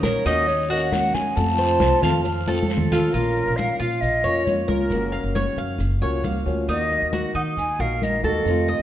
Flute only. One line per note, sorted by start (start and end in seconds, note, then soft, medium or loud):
0.03 0.27 C#5 medium
0.26 0.49 D#5 medium
0.47 0.71 C#5 medium
0.70 0.94 D#5 medium
0.92 1.16 F#5 loud
1.14 1.38 G#5 loud
1.36 2.69 A5 loud
2.91 3.14 A4 medium
3.13 3.58 A#4 medium
3.57 3.79 F5 medium
3.80 4.02 F5 medium
4.01 4.46 D#5 loud
4.45 4.69 C#5 medium
4.68 5.57 A#4 medium
6.69 7.32 D#5 medium
7.36 7.42 F#5 medium
7.59 7.82 G#5 loud
7.80 8.05 F5 medium
8.03 8.24 D#5 medium
8.24 8.82 D#5 medium